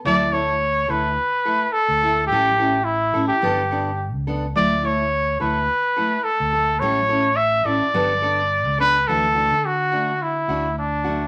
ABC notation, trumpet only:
X:1
M:4/4
L:1/16
Q:"Swing 16ths" 1/4=107
K:D
V:1 name="Trumpet"
d2 c4 B6 A4 | G4 E3 G6 z3 | d2 c4 B6 A4 | c4 e2 d8 B2 |
A4 F4 E4 D4 |]